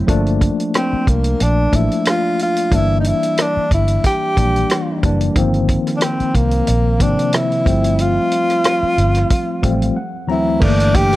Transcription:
0.00 0.11 F#3 medium
0.00 0.08 A3 medium
0.00 0.10 C4 medium
0.07 0.48 G1 medium
0.07 1.10 F3 loud
0.07 1.10 A3 loud
0.07 1.10 A#3 medium
0.07 1.11 D4 loud
0.07 kick loud
0.07 closed hi-hat medium
0.27 closed hi-hat soft
0.41 kick medium
0.41 closed hi-hat medium
0.60 closed hi-hat soft
0.74 1.11 C4 medium
0.74 cross-stick medium
0.74 closed hi-hat medium
0.93 muted fingered electric bass stroke soft
1.07 1.33 C2 medium
1.07 1.44 A#3 medium
1.07 kick medium
1.07 closed hi-hat medium
1.24 closed hi-hat medium
1.40 1.66 A#1 loud
1.40 1.77 D4 medium
1.40 closed hi-hat medium
1.72 1.87 A1 medium
1.72 2.50 F3 medium
1.72 2.50 A3 medium
1.72 2.51 A#3 medium
1.72 2.51 D4 medium
1.72 2.07 E4 medium
1.72 kick medium
1.72 closed hi-hat medium
1.92 closed hi-hat soft
2.05 2.38 F4 medium
2.05 cross-stick loud
2.05 closed hi-hat medium
2.39 2.77 F4 medium
2.39 closed hi-hat medium
2.57 closed hi-hat medium
2.71 3.12 G1 medium
2.71 3.74 E3 medium
2.71 3.74 G3 medium
2.71 3.74 A#3 medium
2.71 3.75 D4 loud
2.71 kick medium
2.71 closed hi-hat medium
2.75 2.99 E4 loud
3.00 3.09 D#4 medium
3.04 3.43 E4 medium
3.04 closed hi-hat medium
3.23 closed hi-hat soft
3.38 3.73 D4 medium
3.38 cross-stick loud
3.38 closed hi-hat medium
3.57 muted fingered electric bass stroke soft
3.71 3.97 G1 medium
3.71 4.03 E4 medium
3.71 kick medium
3.71 closed hi-hat medium
3.88 closed hi-hat medium
4.04 5.00 G4 loud
4.04 kick medium
4.04 closed hi-hat medium
4.36 4.63 A#1 medium
4.36 4.89 E3 medium
4.36 4.89 G3 medium
4.36 4.90 A#3 medium
4.36 4.90 D4 medium
4.36 kick medium
4.36 closed hi-hat medium
4.56 closed hi-hat soft
4.70 cross-stick loud
4.70 closed hi-hat medium
5.03 5.29 F#1 medium
5.03 5.29 E3 medium
5.03 5.29 G3 medium
5.03 5.29 A#3 medium
5.03 5.30 D4 loud
5.03 kick medium
5.03 closed hi-hat medium
5.21 closed hi-hat medium
5.35 5.75 G1 medium
5.35 6.37 D#3 loud
5.35 6.38 F3 loud
5.35 6.38 A#3 medium
5.35 6.39 C4 loud
5.35 kick loud
5.35 closed hi-hat medium
5.54 closed hi-hat soft
5.69 kick medium
5.69 closed hi-hat medium
5.87 cross-stick soft
5.87 closed hi-hat soft
5.97 6.05 D4 medium
6.01 6.37 C4 medium
6.01 cross-stick loud
6.01 closed hi-hat medium
6.20 muted fingered electric bass stroke soft
6.20 closed hi-hat soft
6.35 6.60 C2 loud
6.35 7.03 A#3 medium
6.35 kick medium
6.35 closed hi-hat medium
6.51 closed hi-hat soft
6.67 7.01 A#1 medium
6.67 closed hi-hat medium
6.99 7.14 G#1 medium
6.99 7.66 C3 medium
6.99 7.64 F3 medium
6.99 7.66 A#3 medium
6.99 7.66 C4 medium
6.99 7.36 D4 medium
6.99 kick medium
6.99 closed hi-hat medium
7.19 closed hi-hat soft
7.33 8.03 E4 medium
7.33 cross-stick loud
7.33 closed hi-hat medium
7.52 closed hi-hat soft
7.65 8.17 G1 medium
7.65 8.72 F3 medium
7.65 8.72 G3 medium
7.65 8.72 A3 medium
7.65 8.73 C4 medium
7.65 kick loud
7.65 closed hi-hat medium
7.84 closed hi-hat medium
7.99 9.97 F4 loud
7.99 closed hi-hat medium
8.32 closed hi-hat medium
8.50 cross-stick soft
8.50 closed hi-hat soft
8.64 cross-stick loud
8.64 closed hi-hat medium
8.83 muted fingered electric bass stroke soft
8.98 9.23 G1 medium
8.98 closed hi-hat medium
9.15 cross-stick soft
9.15 closed hi-hat soft
9.30 kick medium
9.30 closed hi-hat medium
9.63 9.89 A1 medium
9.63 9.96 F3 medium
9.63 9.96 G3 medium
9.63 9.96 A3 medium
9.63 9.97 C4 medium
9.63 9.94 F5 medium
9.63 kick medium
9.63 closed hi-hat medium
9.82 closed hi-hat soft
9.96 10.27 F#5 medium
10.27 10.54 D2 medium
10.27 10.54 E3 medium
10.27 10.55 F#3 medium
10.27 10.55 A3 medium
10.27 10.55 C4 medium
10.27 10.65 E4 medium
10.27 10.59 A#5 medium
10.60 11.13 G1 loud
10.60 11.16 E3 medium
10.60 11.16 A3 medium
10.60 11.16 A#3 medium
10.60 11.16 D4 medium
10.60 10.97 D4 loud
10.60 kick loud
10.60 crash loud
10.80 closed hi-hat medium
10.94 11.16 G4 loud
10.94 kick loud
10.94 closed hi-hat medium
11.13 snare soft
11.13 closed hi-hat soft

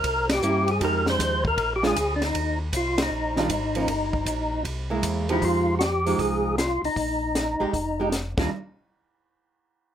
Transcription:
0.00 0.41 C2 medium
0.00 0.28 A#4 medium
0.00 kick soft
0.00 ride medium
0.29 0.71 G4 medium
0.29 snare medium
0.29 ride medium
0.42 0.80 G2 medium
0.42 0.65 A#3 soft
0.42 0.66 C#4 medium
0.42 0.66 E4 medium
0.42 hi-hat pedal medium
0.68 0.82 G#4 medium
0.68 ride soft
0.81 1.18 F2 medium
0.81 1.40 F3 medium
0.81 1.40 G#3 medium
0.81 1.40 D#4 medium
0.81 1.40 G4 medium
0.81 1.06 A#4 medium
0.81 kick soft
0.81 ride medium
1.06 1.44 C5 loud
1.06 snare medium
1.19 1.56 D#2 medium
1.19 kick soft
1.19 snare soft
1.19 hi-hat pedal medium
1.19 ride medium
1.45 1.73 A#4 loud
1.45 kick soft
1.57 1.95 A#1 medium
1.57 kick soft
1.57 ride medium
1.76 1.84 G4 medium
1.83 1.95 G#3 medium
1.83 1.95 D4 medium
1.83 1.95 F4 medium
1.83 2.15 G#4 medium
1.83 snare medium
1.96 2.33 D2 medium
1.96 kick soft
1.96 hi-hat pedal soft
1.96 ride medium
2.16 2.23 D4 medium
2.22 2.59 D#4 medium
2.22 snare soft
2.22 ride soft
2.34 2.72 D#2 medium
2.34 kick soft
2.34 ride medium
2.72 3.10 C2 medium
2.72 3.01 F4 medium
2.72 kick soft
2.72 hi-hat pedal medium
2.72 ride medium
2.98 snare medium
2.98 ride medium
3.02 4.63 D#4 medium
3.11 3.48 A#1 medium
3.36 3.49 D#3 medium
3.36 3.49 G3 medium
3.36 3.49 D4 medium
3.36 3.49 F4 medium
3.36 snare soft
3.49 3.87 G#1 medium
3.49 kick soft
3.49 hi-hat pedal soft
3.49 ride medium
3.75 3.87 F3 medium
3.75 3.88 A#3 medium
3.75 3.88 C#4 medium
3.75 ride soft
3.88 4.25 G1 medium
3.88 kick soft
3.88 ride medium
4.13 kick soft
4.26 4.64 A#1 medium
4.26 kick soft
4.26 hi-hat pedal soft
4.26 ride medium
4.64 5.02 C2 medium
4.64 kick soft
4.64 ride medium
4.90 5.26 G#3 medium
4.90 5.27 A#3 medium
4.90 5.27 E4 medium
5.03 5.41 E2 medium
5.03 kick soft
5.03 hi-hat pedal medium
5.03 ride medium
5.29 5.78 F3 medium
5.29 5.79 G#3 medium
5.29 5.79 D#4 medium
5.29 5.44 E4 medium
5.29 5.79 G4 medium
5.29 ride soft
5.42 6.15 F2 medium
5.42 5.75 F4 medium
5.42 kick soft
5.42 open hi-hat soft
5.79 5.82 F#4 medium
5.79 6.21 G4 medium
5.79 snare medium
5.79 closed hi-hat soft
6.06 6.55 F3 medium
6.06 6.56 G#3 medium
6.06 6.56 D#4 medium
6.06 open hi-hat soft
6.19 6.79 C2 medium
6.19 6.56 G#4 medium
6.19 kick soft
6.19 open hi-hat soft
6.58 6.82 F4 medium
6.58 snare medium
6.58 closed hi-hat soft
6.83 6.90 C2 soft
6.83 8.09 D#4 medium
6.83 open hi-hat soft
6.96 7.56 A#1 medium
6.96 kick soft
6.96 open hi-hat soft
7.35 snare medium
7.35 closed hi-hat soft
7.60 7.67 A#1 soft
7.60 7.72 G#3 medium
7.60 7.72 D#4 medium
7.60 7.73 G4 medium
7.73 8.35 F1 medium
7.73 kick soft
7.73 open hi-hat soft
8.00 8.11 G#3 medium
8.00 8.12 D#4 medium
8.00 8.12 G4 medium
8.12 snare medium
8.12 closed hi-hat medium
8.37 8.50 D#2 medium
8.37 8.50 D#3 medium
8.37 8.50 G3 medium
8.37 8.50 D4 medium
8.37 8.51 D#4 medium
8.37 8.50 F4 medium
8.37 kick medium
8.37 snare medium
8.37 crash medium

